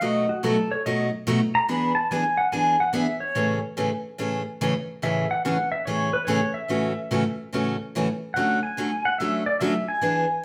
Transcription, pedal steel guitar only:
0.03 0.29 D#5 medium
0.29 0.43 F#4 soft
0.45 0.71 A4 medium
0.71 0.85 C#5 medium
0.86 1.02 D#5 loud
1.55 1.69 A#5 loud
1.69 1.95 B5 loud
1.95 2.09 A5 medium
2.12 2.38 G#5 loud
2.37 2.52 F#5 loud
2.52 2.79 G#5 loud
2.80 2.94 F#5 medium
2.95 3.21 E5 medium
3.20 3.60 C#5 loud
5.03 5.30 E5 medium
5.31 5.44 F#5 medium
5.45 5.70 F#5 medium
5.72 5.86 E5 medium
5.85 6.14 C#5 medium
6.13 6.28 B4 medium
6.25 6.54 C#5 medium
6.54 7.34 E5 medium
8.34 8.60 F#5 medium
8.63 9.05 G#5 medium
9.05 9.19 F#5 medium
9.18 9.46 E5 medium
9.46 9.59 D5 medium
9.60 9.88 E5 medium
9.88 10.45 G#5 medium

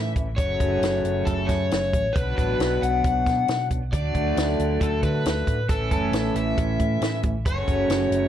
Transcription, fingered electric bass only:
0.00 0.14 A2 medium
0.15 0.36 A1 medium
0.38 0.58 F#1 medium
0.60 0.80 F#1 medium
0.81 1.02 F#1 medium
1.04 1.24 F#1 medium
1.26 1.47 F#1 medium
1.49 1.69 F#2 medium
1.71 1.91 F#1 medium
1.93 2.13 A1 medium
2.16 2.36 B1 medium
2.38 2.58 A1 medium
2.59 2.79 B1 medium
2.82 3.02 B1 medium
3.04 3.24 B1 medium
3.26 3.46 B2 medium
3.49 3.68 B2 medium
3.70 3.90 B1 medium
3.92 4.12 D2 medium
4.15 4.35 D2 medium
4.36 4.57 D2 medium
4.59 4.79 D2 medium
4.81 5.01 D2 medium
5.03 5.23 D3 medium
5.25 5.45 D2 medium
5.47 5.67 A2 medium
5.69 5.89 A1 medium
5.92 6.11 F#1 medium
6.11 6.32 A1 medium
6.34 6.55 A1 medium
6.58 6.78 A1 medium
6.79 7.00 A2 medium
7.01 7.21 A2 medium
7.23 7.44 A1 medium
7.46 7.66 F#1 medium
7.68 7.88 F#1 medium
7.88 8.09 F#1 medium
8.10 8.28 F#1 medium

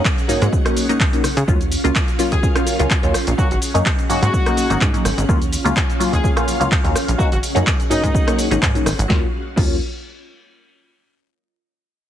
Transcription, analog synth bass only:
0.29 0.39 G#2 soft
0.42 0.49 G#2 loud
1.24 1.34 C#3 soft
1.37 1.44 C#3 loud
1.48 1.77 D#2 medium
1.85 1.91 C#2 medium
2.32 2.39 D#2 loud
2.80 2.87 C#2 medium
3.03 3.14 D#2 loud
3.14 3.25 A#1 soft
3.27 3.34 A#1 loud
3.51 3.58 G#1 medium
3.75 3.82 F#2 medium
4.10 4.20 G#2 soft
4.22 4.29 G#2 loud
4.70 4.77 G#1 medium
4.81 4.97 G#2 loud
5.05 5.13 G#1 medium
5.18 5.25 G#1 loud
5.29 5.58 D#2 medium
5.66 5.72 C#2 medium
6.13 6.20 D#2 loud
6.61 6.68 C#2 medium
6.85 6.95 D#2 loud
6.96 7.06 A#1 soft
7.08 7.15 A#1 loud
7.32 7.39 G#1 medium
7.56 7.63 F#2 medium
7.91 8.01 G#2 soft
8.03 8.10 G#2 loud
8.51 8.58 G#1 medium
8.62 8.78 G#2 loud
8.86 8.94 G#1 medium
8.99 9.06 G#1 loud
9.10 9.24 D#2 loud
9.57 9.80 D#2 loud

